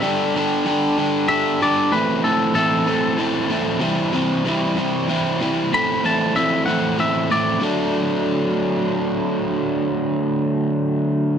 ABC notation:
X:1
M:6/8
L:1/8
Q:3/8=63
K:Dmix
V:1 name="Clean electric guitar"
e4 e d | B A A4- | A2 z4 | b a e f e d |
z6 | z6 |]
V:2 name="Overdriven electric guitar"
[D,G,DGA] [D,G,DGA] [D,G,DGA] [D,G,DGA] [D,G,DGA] [D,G,DGA] | [A,,E,A,CE] [A,,E,A,CE] [A,,E,A,CE] [A,,E,A,CE] [A,,E,A,CE] [A,,E,A,CE] | [C,E,G,CE] [C,E,G,CE] [C,E,G,CE] [C,E,G,CE] [C,E,G,CE] [C,E,G,CE] | [A,,E,A,CE] [A,,E,A,CE] [A,,E,A,CE] [A,,E,A,CE] [A,,E,A,CE] [A,,E,A,CE] |
[D,F,A,D]6- | [D,F,A,D]6 |]